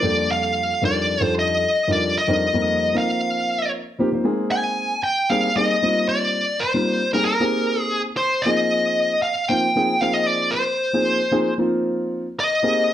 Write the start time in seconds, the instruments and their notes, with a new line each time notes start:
Already playing: lead electric guitar D5
0.02 grand piano F2 G3 A#3 D4 F4 A4
0.31 lead electric guitar F5
0.82 grand piano F2 G3 D4 D#4 F4 A#4, lead electric guitar D5
1.21 grand piano F2 G3 D4 D#4 F4 A4
1.39 lead electric guitar D#5
1.88 grand piano F2 G3 D4 D#4 F4 A#4
1.92 lead electric guitar D5
2.18 lead electric guitar D#5
2.28 grand piano F2 G3 C4 D4 D#4 A#4
2.53 grand piano F2 G3 A#3 C4 D#4 A#4
2.94 grand piano F3 A#3 C4 D#4 A#4
2.98 lead electric guitar F5
3.98 grand piano F3 A#3 C4 D#4 G4
4.12 grand piano F3 A#3 C4 D#4 C5
4.24 grand piano G#3 A#3 C4 D#4 G#4
4.51 lead electric guitar G#5
5.04 lead electric guitar G5
5.30 grand piano G3 A#3 C4 D#4 G#4, lead electric guitar F5
5.56 grand piano G3 A#3 C4 D#4 G#4, lead electric guitar D#5
5.82 grand piano G3 A#3 C4 D#4 F4
6.09 lead electric guitar D5
6.60 lead electric guitar C5
6.74 grand piano G3 A#3 C4 D#4 F4
7.13 grand piano G3 A#3 C4 D#4 G#4, lead electric guitar A#4
7.25 lead electric guitar A#4
7.40 grand piano A#3 C4 D#4 G4 G#4
7.80 lead electric guitar G#4
8.17 lead electric guitar C5
8.42 grand piano F3 A#3 C4, lead electric guitar D#5
8.46 grand piano D#4 G#4
9.22 lead electric guitar F5
9.48 grand piano F3 A#3 C4 D#4 F4, lead electric guitar G5
9.75 grand piano F3 A#3 C4 D#4 G#4
10.01 grand piano F3 A#3 C4 D#4 G#4, lead electric guitar F5
10.14 lead electric guitar D#5
10.27 lead electric guitar D5
10.51 lead electric guitar C5
10.93 grand piano F3 A#3 C4 D#4 G#4
11.31 grand piano F3 A#3 C4 D#4 G#4
11.58 grand piano F3 A#3 C4 D#4 F4
12.40 lead electric guitar D#5
12.62 grand piano A#3 C4 D#4 G4 G#4